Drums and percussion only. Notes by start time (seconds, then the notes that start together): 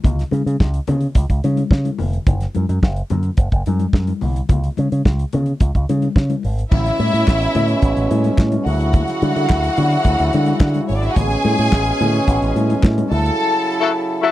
0.04 kick, closed hi-hat, muted conga, low conga
0.19 snare, closed hi-hat
0.31 closed hi-hat, muted conga, high conga
0.47 closed hi-hat
0.60 kick, snare, muted conga
0.74 closed hi-hat
0.87 closed hi-hat, muted conga, low conga
1.01 closed hi-hat
1.15 kick, closed hi-hat, muted conga
1.30 kick, closed hi-hat
1.44 closed hi-hat, muted conga, high conga
1.57 closed hi-hat, high conga
1.71 kick, snare, muted conga
1.85 closed hi-hat, high conga
1.98 open hi-hat, muted conga, low conga
2.13 closed hi-hat
2.27 kick, closed hi-hat, muted conga, low conga
2.41 snare, closed hi-hat
2.55 closed hi-hat, high conga
2.69 closed hi-hat
2.83 kick, snare, muted conga
2.96 closed hi-hat
3.10 closed hi-hat, low conga
3.23 closed hi-hat
3.37 kick, closed hi-hat, muted conga
3.52 kick, closed hi-hat
3.66 closed hi-hat, muted conga, high conga
3.80 closed hi-hat, high conga
3.93 kick, snare
4.07 closed hi-hat, high conga
4.21 open hi-hat, low conga
4.36 closed hi-hat
4.49 kick, closed hi-hat, muted conga, low conga
4.64 closed hi-hat
4.77 closed hi-hat, muted conga, high conga
4.92 closed hi-hat
5.05 kick, snare
5.19 closed hi-hat
5.33 closed hi-hat, muted conga, low conga
5.46 closed hi-hat
5.60 kick, closed hi-hat, muted conga
5.75 kick, closed hi-hat
5.89 closed hi-hat, high conga
6.02 closed hi-hat, high conga
6.16 kick, snare, muted conga
6.30 closed hi-hat, high conga
6.43 open hi-hat, muted conga
6.59 closed hi-hat
6.71 kick, crash, muted conga, low conga
6.86 snare, closed hi-hat
6.99 closed hi-hat, high conga
7.14 closed hi-hat
7.28 kick, snare, clap
7.42 closed hi-hat
7.55 closed hi-hat, muted conga, low conga
7.68 closed hi-hat
7.82 kick, closed hi-hat
7.97 closed hi-hat
8.11 closed hi-hat, high conga
8.24 closed hi-hat, high conga
8.38 kick, snare, clap
8.52 closed hi-hat, high conga
8.66 open hi-hat
8.80 closed hi-hat
8.93 kick, closed hi-hat, muted conga, low conga
9.08 snare, closed hi-hat
9.22 closed hi-hat, high conga
9.36 closed hi-hat
9.49 kick, snare, clap
9.63 closed hi-hat
9.77 closed hi-hat, muted conga, low conga
9.90 closed hi-hat
10.04 kick, closed hi-hat, muted conga
10.19 closed hi-hat
10.33 closed hi-hat, muted conga, high conga
10.46 closed hi-hat, high conga
10.60 kick, snare, clap, muted conga
10.74 closed hi-hat, high conga
10.89 open hi-hat, muted conga
11.03 closed hi-hat
11.16 kick, closed hi-hat, muted conga, low conga
11.30 closed hi-hat
11.44 closed hi-hat, muted conga, high conga
11.58 closed hi-hat
11.72 kick, snare, clap
11.86 closed hi-hat
11.99 closed hi-hat, muted conga, low conga
12.13 closed hi-hat
12.27 kick, closed hi-hat, muted conga
12.42 closed hi-hat
12.56 closed hi-hat, high conga
12.70 closed hi-hat, high conga
12.83 kick, snare, clap
12.98 closed hi-hat, high conga
13.12 open hi-hat
13.26 closed hi-hat